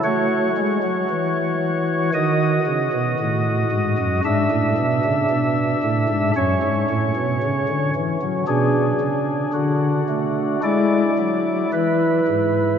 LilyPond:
<<
  \new Staff \with { instrumentName = "Pipe organ" } { \time 4/4 \key b \dorian \tempo 4 = 57 << { cis''2 dis''2 | e''2 cis''4. r8 | gis'4 fis'4 d''4 b'4 | } \\ { fis'2 fis'2 | d'2 cis'2 | d'2 e'2 | } >> }
  \new Staff \with { instrumentName = "Pipe organ" } { \clef bass \time 4/4 \key b \dorian a8 gis16 fis16 e4 dis8 cis16 b,16 a,8 gis,16 fis,16 | gis,16 a,16 b,16 cis16 b,8 a,16 gis,16 fis,16 gis,16 a,16 b,16 cis16 d16 e16 fis16 | b,8 cis8 d8 a8 gis8 fis8 e8 gis,8 | }
>>